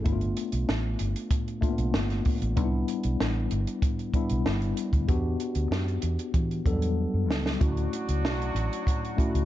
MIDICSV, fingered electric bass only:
0, 0, Header, 1, 3, 480
1, 0, Start_track
1, 0, Tempo, 629591
1, 42, Time_signature, 4, 2, 24, 8
1, 7205, End_track
2, 0, Start_track
2, 0, Title_t, "Fingered electric bass"
2, 0, Program_c, 0, 33
2, 45, Note_on_c, 0, 31, 99
2, 240, Note_off_c, 0, 31, 0
2, 403, Note_on_c, 0, 35, 82
2, 500, Note_off_c, 0, 35, 0
2, 527, Note_on_c, 0, 33, 76
2, 720, Note_off_c, 0, 33, 0
2, 767, Note_on_c, 0, 31, 79
2, 862, Note_off_c, 0, 31, 0
2, 1360, Note_on_c, 0, 35, 72
2, 1458, Note_off_c, 0, 35, 0
2, 1482, Note_on_c, 0, 31, 80
2, 1677, Note_off_c, 0, 31, 0
2, 1844, Note_on_c, 0, 33, 81
2, 1959, Note_off_c, 0, 33, 0
2, 1959, Note_on_c, 0, 36, 91
2, 2155, Note_off_c, 0, 36, 0
2, 2323, Note_on_c, 0, 35, 93
2, 2419, Note_off_c, 0, 35, 0
2, 2443, Note_on_c, 0, 33, 89
2, 2637, Note_off_c, 0, 33, 0
2, 2683, Note_on_c, 0, 31, 84
2, 2779, Note_off_c, 0, 31, 0
2, 3285, Note_on_c, 0, 35, 77
2, 3380, Note_off_c, 0, 35, 0
2, 3404, Note_on_c, 0, 31, 82
2, 3598, Note_off_c, 0, 31, 0
2, 3759, Note_on_c, 0, 38, 88
2, 3856, Note_off_c, 0, 38, 0
2, 3879, Note_on_c, 0, 40, 103
2, 4075, Note_off_c, 0, 40, 0
2, 4236, Note_on_c, 0, 38, 91
2, 4335, Note_off_c, 0, 38, 0
2, 4352, Note_on_c, 0, 42, 90
2, 4551, Note_off_c, 0, 42, 0
2, 4597, Note_on_c, 0, 40, 82
2, 4696, Note_off_c, 0, 40, 0
2, 4834, Note_on_c, 0, 52, 90
2, 5032, Note_off_c, 0, 52, 0
2, 5077, Note_on_c, 0, 40, 88
2, 5372, Note_off_c, 0, 40, 0
2, 5441, Note_on_c, 0, 42, 92
2, 5566, Note_off_c, 0, 42, 0
2, 5566, Note_on_c, 0, 37, 95
2, 5760, Note_off_c, 0, 37, 0
2, 5803, Note_on_c, 0, 38, 94
2, 5998, Note_off_c, 0, 38, 0
2, 6166, Note_on_c, 0, 37, 80
2, 6283, Note_off_c, 0, 37, 0
2, 6283, Note_on_c, 0, 35, 85
2, 6479, Note_off_c, 0, 35, 0
2, 6516, Note_on_c, 0, 33, 85
2, 6616, Note_off_c, 0, 33, 0
2, 7127, Note_on_c, 0, 37, 74
2, 7205, Note_off_c, 0, 37, 0
2, 7205, End_track
3, 0, Start_track
3, 0, Title_t, "Muted fingered electric bass strokes"
3, 1238, Note_on_c, 9, 29, 45
3, 1314, Note_off_c, 9, 29, 0
3, 3153, Note_on_c, 9, 29, 44
3, 3229, Note_off_c, 9, 29, 0
3, 7002, Note_on_c, 9, 29, 47
3, 7079, Note_off_c, 9, 29, 0
3, 7205, End_track
0, 0, End_of_file